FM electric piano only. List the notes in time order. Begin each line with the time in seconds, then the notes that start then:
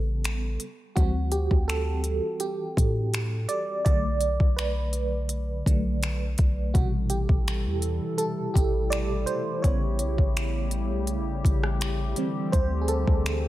Already playing: C#3 G3 B3 A4
0.96 E3 G3 C4 F#4
1.32 G4
1.68 A4
2.40 G4
3.49 D5
3.85 D3 F#3 A3 D5
4.57 B4
5.67 D3 F#3 A3
6.74 B2 C3 G3 F#4
7.10 G4
8.18 A4
8.54 G4
8.90 D5
9.26 C5
9.62 C#3 G3 B3 C#5
12.17 E3 G3 C4
12.52 C5
12.81 G#4
12.88 A4